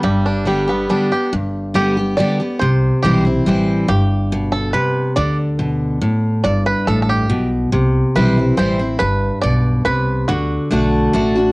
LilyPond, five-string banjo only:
\new Staff \with { instrumentName = "Five-string banjo" } { \time 3/4 \key g \major \tempo 4 = 140 g8 d'8 g8 b8 d'8 g'8 | r4 g'4 d''4 | c''4 g'8 r4. | g'4. a'8 b'4 |
d''8 r2 r8 | d''8 b'8 \tuplet 3/2 { a'8 a'16 g'8.~ } g'8 r8 | r4 b'4 c''4 | b'4 d''4 b'4 |
fis'4 r2 | }